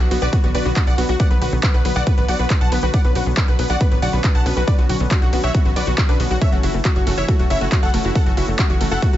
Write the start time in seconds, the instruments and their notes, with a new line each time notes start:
0.00 analog synth bass B1, analog synth pad D3 F#3 B3 F#4, grand piano F#4, supersaw synth F#4, synth pluck F#5, closed hi-hat
0.11 analog synth bass B1, synth pluck B3, supersaw synth F#4, grand piano F#4, open hi-hat, ride
0.22 analog synth bass B1, analog synth pad D3 F#3 B3 F#4, synth pluck F#4, supersaw synth B4 D5, grand piano D5, closed hi-hat
0.33 analog synth pad D3 F#3 B3 F#4, synth pluck B3, grand piano F#4, supersaw synth F#4, kick, closed hi-hat, ride
0.44 analog synth bass A1, synth pluck B3, grand piano F#4, supersaw synth F#4, closed hi-hat
0.55 analog synth bass B1, analog synth pad D3 F#3 B3 F#4, synth pluck F#4, supersaw synth B4 D5, grand piano D5, open hi-hat, ride
0.65 analog synth bass B1, synth pluck B3, supersaw synth F#4, grand piano F#4, closed hi-hat
0.76 analog synth pad D3 F#3 B3 F#4, synth pluck D4, supersaw synth F#4, grand piano F#4, kick, clap, closed hi-hat, ride
0.87 analog synth bass B1, analog synth pad D3 F#3 B3 F#4, supersaw synth D5 F#5, grand piano F#5, synth pluck F#5, closed hi-hat
0.98 analog synth bass B1, synth pluck B3, supersaw synth F#4, grand piano F#4, open hi-hat, ride
1.09 analog synth bass B1, analog synth pad D3 F#3 B3 F#4, grand piano F#4, supersaw synth F#4, synth pluck F#4, closed hi-hat
1.20 analog synth pad D3 F#3 B3 F#4, synth pluck B3, supersaw synth D5 F#5, grand piano F#5, kick, closed hi-hat, ride
1.31 analog synth bass B1, synth pluck B3, supersaw synth B4, grand piano B4, closed hi-hat
1.41 analog synth bass B1, analog synth pad D3 F#3 B3 F#4, synth pluck F#4, supersaw synth B4, grand piano B4, open hi-hat, ride
1.52 analog synth bass B1, synth pluck B3, closed hi-hat
1.63 analog synth pad D3 F#3 B3 F#4, synth pluck D4, grand piano B4, supersaw synth B4, kick, clap, closed hi-hat, ride
1.74 analog synth bass B1, analog synth pad D3 F#3 B3 F#4, grand piano B4, supersaw synth B4, synth pluck F#5, closed hi-hat
1.85 analog synth bass B1, synth pluck B3, supersaw synth B4, grand piano B4, open hi-hat, ride
1.96 analog synth bass B1, analog synth pad D3 F#3 B3 F#4, synth pluck F#4, supersaw synth D5 F#5, grand piano F#5, closed hi-hat
2.07 analog synth pad D3 F#3 B3 F#4, synth pluck B3, supersaw synth B4, grand piano B4, kick, closed hi-hat, ride
2.18 analog synth bass A1, synth pluck B3, supersaw synth B4, grand piano B4, closed hi-hat
2.28 analog synth bass B1, analog synth pad D3 F#3 B3 F#4, synth pluck F#4, supersaw synth D5 F#5, grand piano F#5, open hi-hat, ride
2.39 analog synth bass B1, synth pluck B3, supersaw synth B4, grand piano B4, closed hi-hat
2.50 analog synth pad D3 F#3 B3 F#4, synth pluck D4, supersaw synth B4, grand piano B4, kick, clap, closed hi-hat, ride
2.61 analog synth bass B1, analog synth pad D3 F#3 B3 F#4, supersaw synth F#5 A5, synth pluck F#5, grand piano A5, closed hi-hat
2.72 analog synth bass B1, synth pluck B3, supersaw synth B4, grand piano B4, open hi-hat, ride
2.83 analog synth bass B1, analog synth pad D3 F#3 B3 F#4, synth pluck F#4, supersaw synth B4, grand piano B4, closed hi-hat
2.94 analog synth pad D3 F#3 C#4 F#4, synth pluck B3, supersaw synth D5 F#5, grand piano F#5, kick, closed hi-hat, ride
3.05 analog synth bass B1, synth pluck B3, supersaw synth B4, grand piano B4, closed hi-hat
3.15 analog synth bass B1, analog synth pad D3 F#3 C#4 F#4, synth pluck F#4, supersaw synth B4, grand piano B4, open hi-hat, ride
3.26 analog synth bass B1, synth pluck B3, closed hi-hat
3.37 analog synth pad D3 F#3 C#4 F#4, synth pluck D4, supersaw synth B4, grand piano B4, kick, clap, closed hi-hat, ride
3.48 analog synth bass B1, analog synth pad D3 F#3 C#4 F#4, supersaw synth B4, grand piano B4, synth pluck F#5, closed hi-hat
3.59 analog synth bass B1, synth pluck B3, grand piano B4, supersaw synth B4, open hi-hat, ride
3.70 analog synth bass B1, analog synth pad D3 F#3 C#4 F#4, synth pluck F#4, supersaw synth D5 F#5, grand piano F#5, closed hi-hat
3.81 analog synth pad D3 F#3 C#4 F#4, synth pluck B3, grand piano B4, supersaw synth B4, kick, closed hi-hat, ride
3.91 analog synth bass A1, synth pluck B3, supersaw synth B4, grand piano B4, closed hi-hat
4.02 analog synth bass B1, analog synth pad D3 F#3 C#4 F#4, synth pluck F#4, supersaw synth D5 F#5, grand piano F#5, open hi-hat, ride
4.13 analog synth bass B1, synth pluck B3, supersaw synth B4, grand piano B4, closed hi-hat
4.24 analog synth pad D3 F#3 C#4 F#4, synth pluck D4, grand piano B4, kick, clap, closed hi-hat, ride
4.35 analog synth bass B1, analog synth pad D3 F#3 C#4 F#4, supersaw synth F#5 A5, synth pluck F#5, grand piano A5, closed hi-hat
4.46 analog synth bass B1, synth pluck B3, supersaw synth B4, grand piano B4, open hi-hat, ride
4.57 analog synth bass B1, analog synth pad D3 F#3 C#4 F#4, synth pluck F#4, supersaw synth B4, grand piano B4, closed hi-hat
4.67 analog synth pad D3 F#3 C#4 F#4, synth pluck B3, supersaw synth B4 D5, grand piano D5, kick, closed hi-hat, ride
4.78 analog synth bass B1, synth pluck B3, supersaw synth F#4, grand piano F#4, closed hi-hat
4.89 analog synth bass B1, analog synth pad D3 F#3 C#4 F#4, supersaw synth F#4, grand piano F#4, synth pluck F#4, open hi-hat, ride
5.00 analog synth bass B1, synth pluck B3, closed hi-hat
5.11 analog synth pad D3 F#3 C#4 F#4, synth pluck D4, supersaw synth F#4, grand piano F#4, kick, clap, closed hi-hat, ride
5.22 analog synth bass B1, analog synth pad D3 F#3 C#4 F#4, grand piano F#4, supersaw synth F#4, synth pluck F#5, closed hi-hat
5.33 analog synth bass B1, synth pluck B3, supersaw synth F#4, grand piano F#4, open hi-hat, ride
5.44 analog synth bass B1, analog synth pad D3 F#3 C#4 F#4, synth pluck F#4, supersaw synth C#5 E5, grand piano E5
5.54 analog synth pad D3 F#3 C#4 F#4, synth pluck B3, supersaw synth F#4, grand piano F#4, kick, closed hi-hat, ride
5.65 analog synth bass A1, synth pluck B3, supersaw synth F#4, grand piano F#4, closed hi-hat
5.76 analog synth bass B1, analog synth pad D3 F#3 C#4 F#4, synth pluck F#4, supersaw synth B4 D5, grand piano D5, open hi-hat, ride
5.87 analog synth bass B1, synth pluck B3, supersaw synth F#4, grand piano F#4, closed hi-hat
5.98 analog synth pad D3 F#3 C#4 F#4, synth pluck D4, supersaw synth F#4, grand piano F#4, kick, clap, closed hi-hat, ride
6.09 analog synth bass B1, analog synth pad D3 F#3 C#4 F#4, supersaw synth D4 B4, grand piano B4, synth pluck F#5, closed hi-hat
6.20 analog synth bass B1, synth pluck B3, grand piano F#4, supersaw synth F#4, open hi-hat, ride
6.31 analog synth bass B1, analog synth pad D3 F#3 C#4 F#4, supersaw synth F#4, grand piano F#4, synth pluck F#4, closed hi-hat
6.41 analog synth pad E3 A3 C#4 F#4, synth pluck A3, supersaw synth C#5 E5, grand piano E5, kick, closed hi-hat, ride
6.52 analog synth bass F#1, synth pluck A3, supersaw synth F#4, grand piano F#4, closed hi-hat
6.63 analog synth bass F#1, analog synth pad E3 A3 C#4 F#4, synth pluck E4, supersaw synth F#4, grand piano F#4, open hi-hat, ride
6.74 analog synth bass F#1, synth pluck A3, closed hi-hat
6.85 analog synth pad E3 A3 C#4 F#4, synth pluck C#4, supersaw synth F#4, grand piano F#4, kick, clap, closed hi-hat, ride
6.96 analog synth bass F#1, analog synth pad E3 A3 C#4 F#4, grand piano F#4, supersaw synth F#4, synth pluck C#5, closed hi-hat
7.07 analog synth bass F#1, synth pluck A3, supersaw synth F#4, grand piano F#4, open hi-hat, ride
7.18 analog synth bass F#1, analog synth pad E3 A3 C#4 F#4, synth pluck E4, supersaw synth C#5 E5, grand piano E5
7.28 analog synth pad E3 A3 C#4 F#4, synth pluck A3, grand piano F#4, supersaw synth F#4, kick, closed hi-hat, ride
7.39 analog synth bass E1, synth pluck A3, grand piano F#4, supersaw synth F#4, closed hi-hat
7.50 analog synth bass F#1, analog synth pad E3 A3 C#4 F#4, synth pluck E4, supersaw synth C#5 E5, grand piano E5, open hi-hat, ride
7.61 analog synth bass F#1, synth pluck A3, grand piano F#4, supersaw synth F#4, closed hi-hat
7.72 analog synth pad E3 A3 C#4 F#4, synth pluck C#4, grand piano F#4, supersaw synth F#4, kick, clap, closed hi-hat, ride
7.83 analog synth bass F#1, analog synth pad E3 A3 C#4 F#4, supersaw synth A4 F#5, synth pluck C#5, grand piano F#5, closed hi-hat
7.94 analog synth bass F#1, synth pluck A3, grand piano F#4, supersaw synth F#4, open hi-hat, ride
8.04 analog synth bass F#1, analog synth pad E3 A3 C#4 F#4, synth pluck E4, grand piano F#4, supersaw synth F#4, closed hi-hat
8.15 analog synth pad E3 A3 C#4 F#4, synth pluck A3, supersaw synth A4 F#5, grand piano F#5, kick, closed hi-hat, ride
8.26 analog synth bass F#1, synth pluck A3, supersaw synth F#4, grand piano F#4, closed hi-hat
8.37 analog synth bass F#1, analog synth pad E3 A3 C#4 F#4, synth pluck E4, grand piano F#4, supersaw synth F#4, open hi-hat, ride
8.48 analog synth bass F#1, synth pluck A3, closed hi-hat
8.59 analog synth pad E3 A3 C#4 F#4, synth pluck C#4, grand piano F#4, supersaw synth F#4, kick, clap, closed hi-hat, ride
8.70 analog synth bass F#1, analog synth pad E3 A3 C#4 F#4, grand piano F#4, supersaw synth F#4, synth pluck C#5, closed hi-hat
8.81 analog synth bass F#1, synth pluck A3, supersaw synth F#4, grand piano F#4, open hi-hat, ride
8.91 analog synth bass F#1, analog synth pad E3 A3 C#4 F#4, synth pluck E4, supersaw synth A4 F#5, grand piano F#5, closed hi-hat
9.02 analog synth pad E3 A3 C#4 F#4, synth pluck A3, supersaw synth F#4, grand piano F#4, kick, closed hi-hat, ride
9.13 analog synth bass E1, synth pluck A3, grand piano F#4, supersaw synth F#4, closed hi-hat